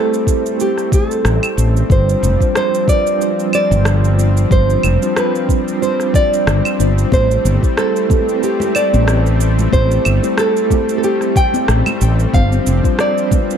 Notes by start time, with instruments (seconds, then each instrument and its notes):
Already playing: analog synth pad G3 A3 C4, tine electric piano A3 C4 E4 G4 C5, nylon-string guitar A4
0.14 cabasa
0.25 tine electric piano A3 C4 E4 G4, kick, cabasa
0.29 tine electric piano C5
0.46 cabasa
0.60 nylon-string guitar G4, cabasa
0.78 cross-stick, cabasa
0.92 nylon-string guitar A4, kick, cabasa
1.11 cabasa
1.25 fretless electric bass A1, cross-stick, cabasa
1.43 cabasa, claves
1.57 fretless electric bass A1, cabasa
1.77 cabasa
1.89 fretless electric bass G1, analog synth pad F3 G3, tine electric piano G3 C4 D4 F4 C5, nylon-string guitar C5, kick, cabasa
2.09 cabasa
2.23 fretless electric bass F1, cabasa
2.39 tine electric piano G3 C4 D4 F4 C5, kick, cabasa
2.55 nylon-string guitar C5, cross-stick, cabasa
2.75 cabasa
2.85 tine electric piano G3 C4 D4 F4, kick
2.89 tine electric piano B4, nylon-string guitar D5, cabasa
3.07 cabasa
3.21 cabasa
3.39 cabasa
3.53 nylon-string guitar D5, cabasa, claves
3.71 fretless electric bass G1, cabasa
3.85 cross-stick, cabasa
4.04 cabasa
4.19 cabasa
4.37 cabasa
4.50 fretless electric bass G1, tine electric piano G3 C4 D4 F4 C5, nylon-string guitar C5, kick, cabasa
4.70 cabasa
4.83 fretless electric bass F1, cabasa, claves
5.01 tine electric piano G3 C4 D4 F4 C5, cabasa
5.16 nylon-string guitar B4, cross-stick, cabasa
5.35 cabasa
5.48 tine electric piano G3 C4 D4 F4 D5, kick, cabasa
5.68 cabasa
5.82 nylon-string guitar C5, cabasa
6.00 cross-stick, cabasa
6.13 tine electric piano G3 C4 D4 F4 D5, nylon-string guitar D5, kick, cabasa
6.34 cabasa
6.47 fretless electric bass G1, cross-stick, cabasa
6.65 cabasa, claves
6.78 fretless electric bass G1, tine electric piano G3 C4 D4 F4 C5, cabasa
6.98 cabasa
7.11 fretless electric bass A1, tine electric piano A3 C4 E4 G4 C5, analog synth pad A3, nylon-string guitar C5, kick, high conga, cabasa
7.31 cabasa
7.45 fretless electric bass G1, cabasa
7.61 tine electric piano A3 C4 E4 G4 C5, kick, cabasa
7.77 nylon-string guitar A4, cross-stick, cabasa
7.96 cabasa
8.07 tine electric piano A3 C4 E4 G4, kick, high conga, low conga, cabasa
8.12 tine electric piano B4
8.29 cabasa
8.43 nylon-string guitar G4, cabasa
8.60 low conga, cabasa
8.75 nylon-string guitar D5, cabasa, claves
8.93 fretless electric bass A1, high conga, cabasa
9.08 cross-stick, cabasa
9.26 cabasa
9.41 cabasa
9.59 low conga, cabasa
9.72 fretless electric bass A1, tine electric piano A3 C4 E4 G4 C5, nylon-string guitar C5, kick, high conga, cabasa
9.91 cabasa
10.05 fretless electric bass G1, cabasa, claves
10.22 tine electric piano A3 C4 E4 G4 C5, cabasa
10.38 nylon-string guitar A4, cross-stick, cabasa
10.57 cabasa
10.68 tine electric piano A3 C4 E4 G4, kick, high conga, low conga, cabasa
10.73 tine electric piano C5
10.89 cabasa
10.98 nylon-string guitar A4
11.03 nylon-string guitar G4, cabasa
11.21 cross-stick, cabasa
11.36 nylon-string guitar G5, kick, cabasa
11.54 high conga, cabasa
11.68 fretless electric bass A1, cross-stick, cabasa
11.86 muted conga, low conga, cabasa, claves
12.01 fretless electric bass A1, cabasa
12.19 cabasa
12.33 fretless electric bass G1, analog synth pad F3 C4, tine electric piano G3 C4 D4 F4 C5, nylon-string guitar F5, kick, high conga, cabasa
12.52 cabasa
12.66 fretless electric bass F1, cabasa
12.83 tine electric piano G3 C4 D4 F4 C5, kick, cabasa
12.99 nylon-string guitar D5, cross-stick, cabasa
13.18 cabasa
13.29 tine electric piano G3 C4 D4 F4, kick, high conga, low conga, cabasa
13.34 tine electric piano B4
13.51 cabasa